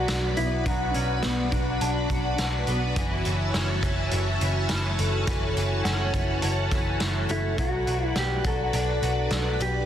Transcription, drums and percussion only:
0.08 snare loud
0.08 closed hi-hat medium
0.37 closed hi-hat soft
0.66 kick medium
0.66 closed hi-hat medium
0.94 closed hi-hat soft
1.23 snare loud
1.23 closed hi-hat medium
1.52 kick medium
1.52 closed hi-hat soft
1.81 closed hi-hat medium
2.10 kick medium
2.10 closed hi-hat soft
2.38 snare loud
2.38 closed hi-hat medium
2.67 closed hi-hat soft
2.96 kick loud
2.96 closed hi-hat medium
3.25 closed hi-hat soft
3.54 snare loud
3.54 closed hi-hat medium
3.83 kick medium
3.83 closed hi-hat soft
4.11 closed hi-hat medium
4.41 closed hi-hat soft
4.69 snare loud
4.69 closed hi-hat medium
4.99 closed hi-hat soft
5.27 kick medium
5.27 closed hi-hat medium
5.57 closed hi-hat soft
5.85 snare medium
5.85 closed hi-hat medium
6.14 kick medium
6.14 closed hi-hat soft
6.42 closed hi-hat medium
6.71 kick medium
6.71 closed hi-hat soft
7.00 snare medium
7.00 closed hi-hat medium
7.29 closed hi-hat soft
7.58 kick medium
7.58 closed hi-hat medium
7.87 closed hi-hat soft
8.16 snare loud
8.16 closed hi-hat medium
8.45 kick medium
8.45 closed hi-hat soft
8.73 closed hi-hat medium
9.03 closed hi-hat soft
9.30 snare medium
9.30 closed hi-hat medium
9.60 closed hi-hat soft

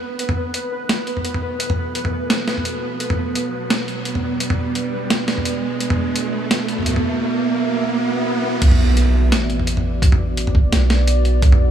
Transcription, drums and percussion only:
0.19 closed hi-hat medium
0.29 mid tom medium
0.54 closed hi-hat medium
0.89 snare loud
0.89 closed hi-hat medium
1.07 closed hi-hat soft
1.17 mid tom soft
1.25 closed hi-hat medium
1.34 mid tom medium
1.60 closed hi-hat medium
1.70 mid tom medium
1.95 closed hi-hat medium
2.05 mid tom medium
2.30 snare loud
2.30 closed hi-hat medium
2.48 snare medium
2.48 closed hi-hat soft
2.57 mid tom soft
2.65 closed hi-hat medium
3.00 closed hi-hat medium
3.10 mid tom medium
3.35 closed hi-hat medium
3.70 snare loud
3.70 closed hi-hat medium
3.88 closed hi-hat soft
4.05 closed hi-hat medium
4.15 mid tom soft
4.40 closed hi-hat medium
4.50 mid tom medium
4.75 closed hi-hat medium
5.10 snare loud
5.10 closed hi-hat medium
5.28 snare medium
5.28 closed hi-hat soft
5.38 mid tom soft
5.45 closed hi-hat medium
5.80 closed hi-hat medium
5.90 mid tom medium
6.16 closed hi-hat medium
6.51 snare loud
6.51 closed hi-hat medium
6.68 closed hi-hat soft
6.78 mid tom soft
6.81 mid tom soft
6.83 mid tom soft
6.85 closed hi-hat medium
6.85 mid tom soft
6.88 mid tom soft
6.90 mid tom soft
6.93 mid tom soft
6.96 mid tom medium
8.62 kick loud
8.62 closed hi-hat medium
8.62 crash loud
8.72 mid tom medium
8.97 closed hi-hat medium
9.32 snare loud
9.32 closed hi-hat medium
9.50 closed hi-hat soft
9.59 mid tom soft
9.67 closed hi-hat medium
9.77 mid tom medium
10.02 kick loud
10.02 closed hi-hat medium
10.12 mid tom medium
10.37 closed hi-hat medium
10.47 mid tom medium
10.55 kick medium
10.72 snare loud
10.72 closed hi-hat medium
10.90 snare medium
10.90 closed hi-hat soft
11.07 closed hi-hat medium
11.25 closed hi-hat soft
11.42 kick loud
11.42 closed hi-hat medium
11.52 mid tom medium

